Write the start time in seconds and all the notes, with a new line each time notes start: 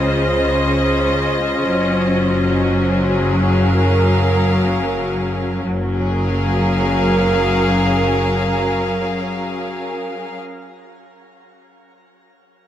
Already playing: C#2 C#3 C#4 F4 C5 D#5
1.65 F#1 F#3
2.40 G#4
3.44 A#4 F5
5.63 F#1 F#3
5.78 C#4
5.95 G#4
6.10 A#4
6.25 F5